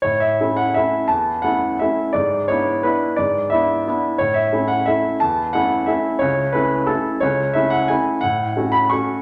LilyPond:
\new Staff \with { instrumentName = "Grand piano" } { \time 3/4 \key a \major \tempo 4 = 176 << { cis''8 e''4 fis''8 e''4 | a''4 fis''4 e''4 | d''4 cis''4 b'4 | d''4 e''2 |
cis''8 e''4 fis''8 e''4 | a''4 fis''4 e''4 | cis''4 b'4 a'4 | cis''4 e''8 fis''8 gis''4 |
\key fis \dorian fis''4. b''8 cis'''4 | } \\ { a,4 <a cis' e'>4 <a cis' e'>4 | e,4 <a cis' e'>4 <a cis' e'>4 | gis,4 <b d' e'>4 <b d' e'>4 | gis,4 <b d' e'>4 <b d' e'>4 |
a,4 <a cis' e'>4 <a cis' e'>4 | e,4 <a cis' e'>4 <a cis' e'>4 | cis,4 <a cis' e'>4 <a cis' e'>4 | cis,4 <a cis' e'>4 <a cis' e'>4 |
a,4 <a cis' fis'>4 <a cis' fis'>4 | } >> }